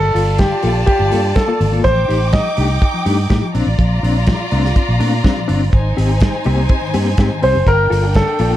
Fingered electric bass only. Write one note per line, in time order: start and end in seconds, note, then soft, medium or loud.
0.00 0.10 G1 medium
0.15 0.44 G1 medium
0.64 0.83 A#1 medium
1.00 1.10 G1 loud
1.13 1.32 G2 medium
1.61 1.80 G#1 medium
1.85 2.05 A1 loud
2.09 2.39 A1 medium
2.58 2.77 C2 medium
3.06 3.26 G2 medium
3.30 3.40 A2 medium
3.55 3.65 A#1 medium
3.67 3.76 A1 medium
3.79 3.99 A#1 medium
4.03 4.33 A#1 loud
4.52 4.72 C2 medium
4.89 4.98 A#1 medium
5.01 5.20 A#2 medium
5.49 5.69 G1 medium
5.73 5.93 G#1 medium
5.98 6.27 G#1 loud
6.46 6.66 C2 medium
6.95 7.14 G2 medium
7.18 7.28 G#2 medium
7.43 7.53 C2 medium
7.55 7.65 F#1 medium
7.67 7.87 G1 medium
7.91 8.21 G1 medium
8.40 8.57 A#1 medium